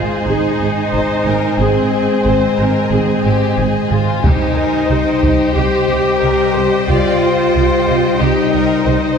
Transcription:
Already playing: french horn section G#3 C5, cello section F4, violin section G#4 D#5 G#5, viola section C5
0.26 double bass section G#1, cello section D#4, viola section G#4
0.61 double bass section G#1, viola section G#4
0.91 double bass section G#1, viola section G#4, violin section C5
1.25 double bass section G#1, viola section G#4, violin section A#4
1.58 double bass section G#1, cello section C4, violin section G#4, viola section G#4
2.25 double bass section G#1, viola section G#4, violin section C5
2.58 double bass section G#1, viola section G#4, violin section A#4
2.91 double bass section G#1, cello section C4, viola section G#4, violin section G#4
3.24 double bass section G#1, viola section G#3, violin section G4
3.57 double bass section G#1, viola section G#4, violin section G#4
3.90 double bass section G#1, violin section F4, viola section G#4
4.23 double bass section C2, french horn section G3 C5, viola section G3 C5, cello section D#4, violin section G4 D#5, taiko
4.55 violin section A#4
4.88 double bass section C2, viola section G4, violin section C5 G5
5.21 double bass section C2, violin section G4, viola section G4, taiko
5.55 double bass section C2, viola section G4, cello section G4
5.89 double bass section C2, viola section G4
6.20 double bass section C2, viola section G4, violin section A#4
6.53 double bass section C2, viola section G4, violin section C5
6.88 double bass section C2, cello section F4, viola section G4, violin section D5
7.21 violin section C5
7.55 double bass section C2, viola section G4
7.87 double bass section C2, viola section G4
8.19 double bass section C2, cello section D#4, violin section G4, viola section G4
8.52 double bass section C2, viola section G4, violin section A#4
8.86 double bass section C2, viola section G4, violin section C5

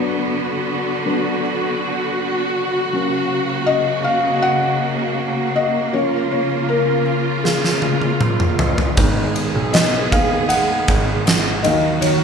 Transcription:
Already playing: string section D3 B3 F#4, felt piano F#3 B3 D4 C#5
1.06 felt piano F#3 B3 D4
2.93 string section C#3 A#3, felt piano F#3 A#3 C#4
3.66 felt piano D#5
4.04 felt piano F5
4.42 felt piano F#5
5.56 felt piano D#5
5.92 string section C#3 F4, felt piano F3 A#3 C#4 C#5
6.31 felt piano C#5
6.69 felt piano A#4
7.44 felt piano G#4, snare
7.64 snare
7.82 high tom
8.02 high tom
8.21 mid tom
8.40 mid tom
8.59 floor tom
8.78 floor tom
8.97 grand piano G#1, steel-string acoustic guitar G#2, string section D#3 B3 G#4, felt piano G#3 B3 D#4, kick, ride
9.36 steel-string acoustic guitar D#4, ride
9.56 grand piano B1
9.73 steel-string acoustic guitar B3, felt piano D#5, snare, ride
10.12 grand piano D#2, felt piano G#3 B3 D#4 F5, steel-string acoustic guitar G#4, kick, ride
10.49 steel-string acoustic guitar G#3, felt piano F#5, ride
10.88 grand piano G#1, steel-string acoustic guitar D#4, kick, ride
11.26 steel-string acoustic guitar B3, snare, ride
11.63 grand piano D#2, string section A#2 F#4, steel-string acoustic guitar D#3, felt piano F#3 A#3 D#4 D#5, ride
12.01 steel-string acoustic guitar D#3, felt piano C#5, ride

